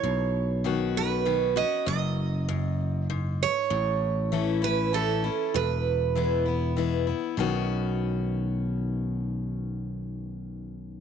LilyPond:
<<
  \new Staff \with { instrumentName = "Steel-string acoustic guitar" } { \time 3/4 \key b \mixolydian \tempo 4 = 98 cis''4. b'4 dis''8 | dis''2 r8 cis''8~ | cis''4. b'8 a'4 | b'2 r4 |
r2. | r2. | }
  \new Staff \with { instrumentName = "Steel-string acoustic guitar" } { \time 3/4 \key b \mixolydian << { r4 <b, dis cis' fis'>4 <b, dis cis' fis'>8 <cis' fis'>8 | r2. | r4 <e a cis' e'>8 <cis' e'>8 <e a cis' e'>8 <cis' e'>8 | r4 <e gis b e'>8 <b e'>8 <e gis b e'>8 <b e'>8 |
<b, dis cis' fis'>2.~ | <b, dis cis' fis'>2. | } \\ { b,2 r4 | fis,4 fis,4 gis,4 | a,2 r4 | e,2 r4 |
r2. | r2. | } >> }
  \new Staff \with { instrumentName = "Picked electric bass" } { \clef bass \time 3/4 \key b \mixolydian b,,2. | fis,,2. | a,,2. | e,,2. |
b,,2.~ | b,,2. | }
>>